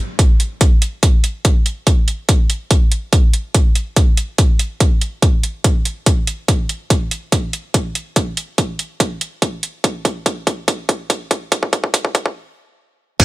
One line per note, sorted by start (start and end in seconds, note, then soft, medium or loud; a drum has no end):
0.19 kick medium
0.19 closed hi-hat medium
0.40 closed hi-hat soft
0.61 kick loud
0.61 closed hi-hat medium
0.82 closed hi-hat medium
1.03 kick medium
1.03 closed hi-hat medium
1.24 closed hi-hat medium
1.45 kick medium
1.45 closed hi-hat medium
1.66 closed hi-hat medium
1.87 kick loud
1.87 closed hi-hat medium
2.08 closed hi-hat soft
2.29 kick loud
2.29 closed hi-hat medium
2.50 closed hi-hat medium
2.71 kick loud
2.71 closed hi-hat medium
2.92 closed hi-hat medium
3.13 kick loud
3.13 closed hi-hat medium
3.33 closed hi-hat soft
3.54 kick medium
3.54 closed hi-hat medium
3.75 closed hi-hat soft
3.96 kick medium
3.96 closed hi-hat medium
4.17 closed hi-hat medium
4.38 kick loud
4.38 closed hi-hat medium
4.59 closed hi-hat medium
4.80 kick loud
4.80 closed hi-hat medium
5.01 closed hi-hat soft
5.22 kick medium
5.22 closed hi-hat medium
5.43 closed hi-hat soft
5.64 kick loud
5.64 closed hi-hat medium
5.85 closed hi-hat medium
6.06 kick loud
6.06 closed hi-hat medium
6.27 closed hi-hat medium
6.48 kick loud
6.48 closed hi-hat medium
6.69 closed hi-hat medium
6.90 kick loud
6.90 closed hi-hat medium
7.11 closed hi-hat soft
7.32 kick loud
7.32 closed hi-hat medium
7.53 closed hi-hat soft
7.74 kick loud
7.74 closed hi-hat medium
7.95 closed hi-hat medium
8.16 kick loud
8.16 closed hi-hat medium
8.37 closed hi-hat medium
8.58 kick loud
8.58 closed hi-hat medium
8.79 closed hi-hat soft
9.00 kick loud
9.00 closed hi-hat medium
9.21 closed hi-hat medium
9.42 kick loud
9.42 closed hi-hat medium
9.63 closed hi-hat medium
9.84 kick loud
9.84 closed hi-hat medium
10.05 kick loud
10.05 closed hi-hat medium
10.26 kick loud
10.26 closed hi-hat medium
10.47 kick loud
10.47 closed hi-hat medium
10.68 kick loud
10.68 closed hi-hat medium
10.89 kick loud
10.89 closed hi-hat medium
11.10 kick loud
11.10 closed hi-hat medium
11.31 kick loud
11.31 closed hi-hat medium
11.52 kick loud
11.52 closed hi-hat medium
11.63 kick medium
11.73 kick loud
11.73 closed hi-hat medium
11.84 kick medium
11.94 kick loud
11.94 closed hi-hat medium
12.05 kick medium
12.15 kick loud
12.15 closed hi-hat medium
12.26 kick medium
13.20 13.25 D2 loud
13.20 kick loud
13.20 closed hi-hat medium
13.20 crash loud